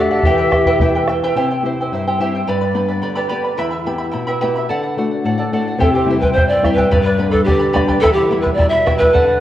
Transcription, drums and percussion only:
0.23 bombo low
0.52 bombo rim, bombo low
0.66 bombo low
0.80 bombo low
1.07 bombo rim
5.82 bombo low
6.23 bombo low
6.38 bombo low
6.65 bombo rim, bombo low
6.79 bombo low
6.93 bombo low
7.34 bombo low
7.48 bombo low
7.76 bombo rim, bombo low
7.90 bombo low
8.05 bombo low
8.46 bombo low
8.60 bombo low
8.87 bombo rim, bombo low
9.02 bombo low
9.15 bombo low

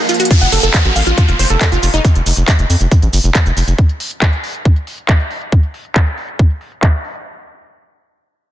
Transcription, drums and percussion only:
0.09 closed hi-hat, cabasa
0.14 closed hi-hat
0.20 closed hi-hat, cabasa
0.25 closed hi-hat
0.31 kick, closed hi-hat, cabasa
0.41 closed hi-hat, cabasa
0.52 open hi-hat, cabasa
0.63 closed hi-hat, cabasa
0.74 kick, clap, closed hi-hat, cabasa
0.85 closed hi-hat, cabasa
0.96 open hi-hat, cabasa
1.07 closed hi-hat, cabasa
1.18 kick, closed hi-hat, cabasa
1.28 closed hi-hat, cabasa
1.39 open hi-hat, cabasa
1.50 closed hi-hat, cabasa
1.61 kick, clap, closed hi-hat, cabasa
1.72 closed hi-hat, cabasa
1.83 open hi-hat, cabasa
1.94 closed hi-hat, cabasa
2.05 kick, closed hi-hat, cabasa
2.15 closed hi-hat, cabasa
2.26 open hi-hat, cabasa
2.37 closed hi-hat, cabasa
2.48 kick, clap, closed hi-hat, cabasa
2.59 closed hi-hat, cabasa
2.70 open hi-hat, cabasa
2.81 closed hi-hat, cabasa
2.92 kick, closed hi-hat, cabasa
3.02 closed hi-hat, cabasa
3.13 open hi-hat, cabasa
3.24 closed hi-hat, cabasa
3.35 kick, clap, closed hi-hat, cabasa
3.46 closed hi-hat, cabasa
3.57 open hi-hat, cabasa
3.67 closed hi-hat, cabasa
3.78 kick, closed hi-hat
3.89 closed hi-hat
4.00 open hi-hat
4.11 closed hi-hat
4.22 kick, clap, closed hi-hat
4.33 closed hi-hat
4.44 open hi-hat
4.55 closed hi-hat
4.65 kick, closed hi-hat
4.76 closed hi-hat
4.87 open hi-hat
4.98 closed hi-hat
5.09 kick, clap
5.20 closed hi-hat
5.31 open hi-hat
5.42 closed hi-hat
5.52 kick, closed hi-hat
5.63 closed hi-hat
5.74 open hi-hat
5.85 closed hi-hat
5.96 kick, clap
6.07 closed hi-hat
6.18 open hi-hat
6.28 closed hi-hat
6.39 kick
6.50 closed hi-hat
6.61 open hi-hat
6.72 closed hi-hat
6.83 kick, clap
7.05 open hi-hat
7.15 closed hi-hat

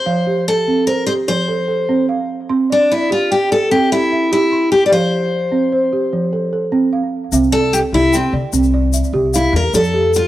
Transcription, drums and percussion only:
7.32 shaker
7.43 shaker
7.74 shaker
8.13 shaker
8.53 shaker
8.63 shaker
8.93 shaker
9.04 shaker
9.34 shaker
9.74 shaker
9.84 shaker
10.14 shaker

